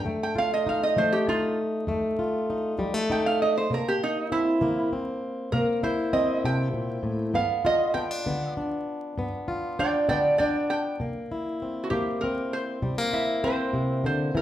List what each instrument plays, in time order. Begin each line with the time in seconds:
0.05 steel-string acoustic guitar F2 A3
0.23 resonator guitar played with a steel bar G5
0.35 steel-string acoustic guitar F4, resonator guitar played with a steel bar F5
0.54 resonator guitar played with a steel bar D#5
0.66 steel-string acoustic guitar D#4, resonator guitar played with a steel bar F5
0.83 resonator guitar played with a steel bar D#5
0.96 steel-string acoustic guitar F3 A3, resonator guitar played with a steel bar C5
1.12 resonator guitar played with a steel bar G4
1.28 steel-string acoustic guitar D#4, resonator guitar played with a steel bar F4
1.87 steel-string acoustic guitar F2 A3
2.19 steel-string acoustic guitar F4
2.50 steel-string acoustic guitar D#4
2.79 steel-string acoustic guitar F3 G3
2.94 steel-string acoustic guitar A3
3.10 steel-string acoustic guitar D#4, resonator guitar played with a steel bar G5
3.26 resonator guitar played with a steel bar F5
3.42 resonator guitar played with a steel bar D#5
3.57 resonator guitar played with a steel bar C5
3.70 steel-string acoustic guitar C3 A#3, resonator guitar played with a steel bar A#4
3.88 resonator guitar played with a steel bar G4
4.03 resonator guitar played with a steel bar D#4
4.32 steel-string acoustic guitar C4, resonator guitar played with a steel bar E4
4.61 steel-string acoustic guitar E3 A#3
4.93 steel-string acoustic guitar C4
5.52 steel-string acoustic guitar C3 A#3, resonator guitar played with a steel bar A#4
5.83 steel-string acoustic guitar E4, resonator guitar played with a steel bar C5
6.13 steel-string acoustic guitar C4, resonator guitar played with a steel bar D#5
6.44 steel-string acoustic guitar C3, resonator guitar played with a steel bar G5
6.73 steel-string acoustic guitar A#2
7.03 steel-string acoustic guitar A2
7.34 steel-string acoustic guitar G2 B3, resonator guitar played with a steel bar F5
7.65 steel-string acoustic guitar F4, resonator guitar played with a steel bar D#5
7.94 steel-string acoustic guitar B3, resonator guitar played with a steel bar G5
8.11 steel-string acoustic guitar D4
8.26 steel-string acoustic guitar D3 B3
8.57 steel-string acoustic guitar D4
9.18 steel-string acoustic guitar G2 B3
9.48 steel-string acoustic guitar F4
9.79 steel-string acoustic guitar D4, resonator guitar played with a steel bar D5 G5
10.09 steel-string acoustic guitar D3 B3, resonator guitar played with a steel bar D5 G5
10.38 steel-string acoustic guitar D4, resonator guitar played with a steel bar D5 G5
10.70 resonator guitar played with a steel bar G5
11.00 steel-string acoustic guitar C3 A#3
11.32 steel-string acoustic guitar E4
11.62 steel-string acoustic guitar C4
11.84 resonator guitar played with a steel bar F#4
11.90 steel-string acoustic guitar E3 A#3, resonator guitar played with a steel bar G4
12.21 steel-string acoustic guitar C4, resonator guitar played with a steel bar A#4
12.53 resonator guitar played with a steel bar C5
12.82 steel-string acoustic guitar C3 G3
12.98 steel-string acoustic guitar A#3
13.13 steel-string acoustic guitar E4, resonator guitar played with a steel bar E5
13.44 steel-string acoustic guitar C4, resonator guitar played with a steel bar C5
13.73 steel-string acoustic guitar C3
14.04 steel-string acoustic guitar D3, resonator guitar played with a steel bar C5
14.35 steel-string acoustic guitar E3, resonator guitar played with a steel bar A#4